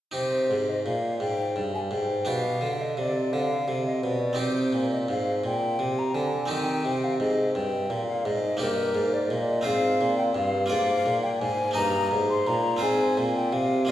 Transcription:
0.11 C3 D#4 G4 C5
0.49 G#2
0.67 D#5
0.84 A#2 F5
1.20 G#2 G5
1.56 G2
1.74 G#5
1.90 G#2 G5
2.25 B2 D4 G4 F5
2.61 D3
2.82 D#5
2.97 C3 D5
3.32 D3 F5
3.67 C3
3.86 D#5
4.02 B2 D5
4.33 C4 D#4 G4
4.38 C3 C5
4.73 A#2
4.92 D#5
5.08 G#2 F5
5.44 A#2 G5
5.79 C3
5.99 A#5
6.14 D3 G#5
6.46 C4 D#4 G4
6.50 D#3 G5
6.85 C3
7.04 F5
7.19 G#2 D#5
7.54 G2 G5
7.89 A#2
8.07 F5
8.25 G#2 D#5
8.57 G2 A#3 D#4 G4 A#4
8.61 G2
8.95 G#2
9.13 D5
9.30 A#2 D#5
9.61 C4 F4 C5
9.66 G#2 F5
10.00 A#2
10.18 G5
10.35 G2 F5
10.66 A#3 F4 D5 F5
10.71 G#2
11.06 A#2
11.23 G5
11.40 G#2 G#5
11.71 A#3 D#4 D#5
11.75 G2 A#5
12.11 G#2
12.30 C6
12.47 A#2 A#5
12.77 C4 F4 C5
12.81 G#2 G#5
13.17 A#2
13.36 G5
13.52 C3 F5
13.85 A#3 F4 G#4

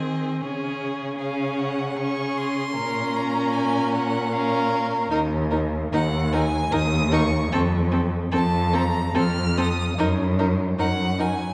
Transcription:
Already playing: D#3 C4 G#4 D#5
0.41 C#3 C#4 G#4
1.17 C#4 G#4 F5
1.58 F#5
1.97 C#4 G#4 C#6
2.37 C6
2.76 A#2 C#4 A#4
3.16 A#5
3.54 G#5
3.92 F#5
4.31 C#4 A#4 F5
5.10 D#2 D#4 A#4
5.51 D#4 A#4
5.92 D#2 D#4 A#4 F#5
6.33 D#4 A#4 G#5
6.72 D#2 D#4 A#4 D#6
7.11 D#4 A#4 C#6
7.52 F2 C4 A4
7.91 C4 A4
8.32 F2 C4 A4 A5
8.73 C4 A4 A#5
9.15 F2 C4 A4 F6
9.58 C4 A4 D#6
9.98 F#2 D#4 A#4
10.39 D#4 A#4
10.78 F#2 D#4 A#4 F#5
11.18 D#4 A#4 G#5

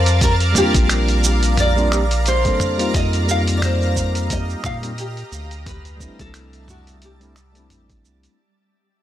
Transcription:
Already playing: F2 A#4 C5 D5 F5 A5
0.06 closed hi-hat, cabasa
0.21 A#4 A#5, kick, closed hi-hat, cabasa
0.40 closed hi-hat, cabasa
0.53 G3 A#3 C4, mid tom, cabasa
0.58 D4 F4 G4
0.74 A#1, kick, closed hi-hat, cabasa
0.89 finger snap, closed hi-hat, cabasa
1.08 closed hi-hat, cabasa
1.24 cabasa
1.43 closed hi-hat, cabasa
1.57 D5, closed hi-hat, mid tom, cabasa
1.76 G3 A#3 C4 D4 F4, cabasa
1.90 G3 A#3 C4 D4 G4, finger snap, cabasa
2.11 closed hi-hat, cabasa
2.26 C5, closed hi-hat, cabasa
2.44 G3 A#3 C4 D4 A4, kick, closed hi-hat, cabasa
2.60 mid tom, cabasa
2.77 G3 A#3 C4 D#4 F4, closed hi-hat, cabasa
2.94 F2 G4 D#5, kick, closed hi-hat, cabasa
3.13 closed hi-hat, cabasa
3.24 G3 A#3 C4
3.29 D#4 F4 F5, cabasa
3.47 closed hi-hat, cabasa
3.57 D5
3.62 C5, finger snap, closed hi-hat, mid tom, cabasa
3.82 cabasa
3.96 kick, cabasa
4.15 closed hi-hat, cabasa
4.30 D#5, kick, closed hi-hat, cabasa
4.50 cabasa
4.64 A#2 F5, finger snap, kick, mid tom, cabasa
4.82 G3 A#3 C4 D#4 F4, closed hi-hat, cabasa
4.98 G4, closed hi-hat, cabasa
5.17 closed hi-hat, cabasa
5.32 D2 G3 D5 E5 A5, cabasa
5.51 closed hi-hat, cabasa
5.66 B4, kick, closed hi-hat, mid tom, cabasa
5.85 closed hi-hat, cabasa
5.97 G3 A3 C4, kick
6.01 D4 E4, cabasa
6.19 C2 A4, kick, closed hi-hat, cabasa
6.34 finger snap, closed hi-hat, cabasa
6.53 closed hi-hat, cabasa
6.68 F#4, mid tom, cabasa
6.87 closed hi-hat, cabasa
7.02 G4, closed hi-hat, cabasa
7.20 G3 A3 C4 D4 E4, closed hi-hat, cabasa
7.36 finger snap, cabasa
7.52 G3 A3 C4, closed hi-hat, cabasa
7.58 D4 E4
7.70 A1, closed hi-hat, mid tom, cabasa
7.90 kick, closed hi-hat, cabasa
8.04 C2, cabasa
8.23 closed hi-hat, cabasa

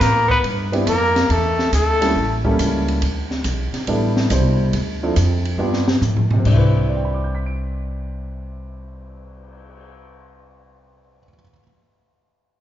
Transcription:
0.00 A2 A#3 A#4, kick, snare, hi-hat pedal, ride
0.28 B3 B4, kick
0.43 G2, kick, ride
0.72 B3 C4 D4 E4 G4, ride
0.86 F2 A#3 A#4, kick, hi-hat pedal, ride
1.16 snare, ride
1.29 E2 A3 A4, kick, ride
1.59 snare
1.72 D2 A3 A4, kick, hi-hat pedal, ride
2.01 G3 A#3 C#4 E4 A4, snare, ride
2.15 A1, kick
2.44 G3 A#3 C#4 E4 A4, kick
2.59 C#2, kick, hi-hat pedal, ride
2.88 ride
3.02 D2, kick, ride
3.31 snare
3.44 B1, kick, hi-hat pedal, ride
3.74 muted upright bass stroke, snare, ride
3.87 A1 G3 B3 D4 E4 A4, kick, ride
4.17 snare
4.30 C2 B2 G3 D4 E4 C5, kick, hi-hat pedal, ride
4.73 D2, kick, ride
5.03 F3 C4 D4 E4 A4
5.16 F2, kick, hi-hat pedal, ride
5.45 ride
5.58 G2 G3 B3 D4 F4 G4
5.73 snare
5.88 snare
6.01 A2, floor tom, hi-hat pedal
6.17 floor tom
6.31 C3, floor tom
6.40 C4
6.45 C2 D4, kick, crash
6.52 E4
6.58 B4
6.74 cymbal swell
6.89 D5
6.97 G5
7.05 B5
7.14 D6
7.24 G6
7.35 B6
7.46 D7

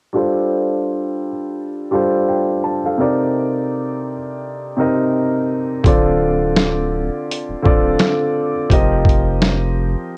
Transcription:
0.13 G3 D4 F4 A4
0.17 C5
1.91 G3 D4 F4 A4
1.95 C5
2.28 G5
2.64 C5 A5
2.85 A4 F5
2.98 C3 C4 D#4 A#4 D5
4.77 C3 C4 D#4 A#4 D#5
5.83 D1 D3 C4 F4 A4, kick, closed hi-hat
5.87 D5
6.56 finger snap, snare, closed hi-hat
7.31 closed hi-hat
7.49 D1
7.62 D1 D3 C4 F4 A4 D5, kick
7.99 finger snap, snare, closed hi-hat
8.69 F1 F3 C4 G4 A#4, kick, closed hi-hat
8.73 D#5
9.05 kick
9.09 closed hi-hat
9.42 finger snap, snare, closed hi-hat

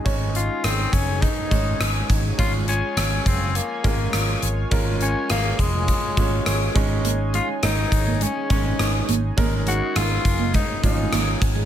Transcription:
Already playing: G#3 C#4 D#4 F#4 G#4 C#5 G#5
0.05 G#1 G#3 C#4 D#4 C#5, kick, closed hi-hat
0.35 F4, closed hi-hat
0.64 G#1 C4, cross-stick, closed hi-hat
0.93 F#1 C#4, kick, closed hi-hat
1.22 D#4, kick, closed hi-hat
1.51 G#1 G#3 C#4 D#4 C#5, kick, closed hi-hat
1.80 G#1, cross-stick, closed hi-hat
2.10 G#1, kick, closed hi-hat
2.38 G#1 G#3 C#4 F4 G#4 C#5, kick, closed hi-hat
2.68 C#4, closed hi-hat
2.97 G#1, cross-stick, closed hi-hat
3.26 F#1 C4, kick, closed hi-hat
3.55 A#3, closed hi-hat
3.83 G#1 G#3 C#4 F4 A#4, kick, closed hi-hat
4.13 G#1, cross-stick, closed hi-hat
4.42 G#1, closed hi-hat
4.71 G#1 G#3 C#4 F4 A#4, kick, closed hi-hat
5.01 C#4, closed hi-hat
5.30 G#1 A#3, cross-stick, closed hi-hat
5.59 F1 G#3, kick, closed hi-hat
5.88 kick, closed hi-hat
6.17 G#1 G#3 C#4 F4 C#5, kick, closed hi-hat
6.46 G#1, cross-stick, closed hi-hat
6.75 G#1 G#3 C#4 D#4 C#5, kick, closed hi-hat
7.05 A#3, closed hi-hat
7.34 G#3 F4, closed hi-hat
7.49 muted clean electric guitar stroke
7.63 G#1 G#3 D#4, cross-stick, closed hi-hat
7.78 muted clean electric guitar stroke
7.92 G#1, kick, closed hi-hat
8.07 A#3
8.21 G#3 C#4, closed hi-hat
8.36 muted clean electric guitar stroke
8.49 G#1 G#3 C#4 D#4 C#5, kick, closed hi-hat
8.65 C4
8.79 G#1, cross-stick, closed hi-hat
9.09 G#1 A#3, closed hi-hat
9.37 G#1 G#3 A#3 C#4 D#4 A#4, kick, closed hi-hat
9.67 G#3 F#4, closed hi-hat
9.81 muted clean electric guitar stroke
9.95 G#1 G#3 F4, cross-stick, closed hi-hat
10.10 muted clean electric guitar stroke
10.25 F#1, kick, closed hi-hat
10.39 A#3
10.54 G#3 D#4, kick, closed hi-hat
10.83 G#1 G#3 C#4 D#4 F4, muted clean electric guitar stroke, kick, closed hi-hat
10.97 C4
11.12 G#1 A#3, cross-stick, closed hi-hat
11.41 G#1, muted clean electric guitar stroke, kick, closed hi-hat
11.55 G#3

